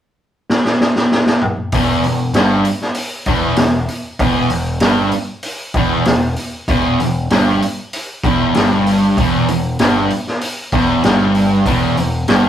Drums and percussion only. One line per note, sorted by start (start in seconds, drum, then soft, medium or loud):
0.50 snare medium
0.65 snare medium
0.80 snare medium
0.96 snare medium
1.11 snare medium
1.26 snare medium
1.41 mid tom medium
1.72 kick loud
1.72 open hi-hat medium
2.04 open hi-hat medium
2.34 snare loud
2.34 open hi-hat medium
2.65 open hi-hat medium
2.81 snare soft
2.94 open hi-hat medium
3.26 kick loud
3.26 open hi-hat medium
3.56 snare loud
3.56 open hi-hat medium
3.88 open hi-hat medium
4.19 kick loud
4.19 open hi-hat medium
4.50 open hi-hat medium
4.80 snare loud
4.80 open hi-hat medium
5.11 open hi-hat medium
5.43 open hi-hat medium
5.74 kick loud
5.74 open hi-hat soft
6.05 snare loud
6.05 open hi-hat medium
6.36 open hi-hat medium
6.68 kick loud
6.68 open hi-hat medium
7.00 open hi-hat soft
7.30 snare loud
7.30 open hi-hat medium
7.62 open hi-hat medium
7.93 open hi-hat medium
8.24 kick loud
8.24 open hi-hat medium
8.54 snare loud
8.54 open hi-hat medium
8.86 open hi-hat medium
9.17 kick loud
9.17 open hi-hat medium
9.48 open hi-hat medium
9.79 snare loud
9.79 open hi-hat medium
10.10 open hi-hat medium
10.27 snare soft
10.41 open hi-hat medium
10.72 kick loud
10.72 open hi-hat soft
11.03 snare loud
11.03 open hi-hat medium
11.35 open hi-hat soft
11.66 kick medium
11.66 open hi-hat medium
11.97 open hi-hat medium
12.28 snare loud
12.28 open hi-hat medium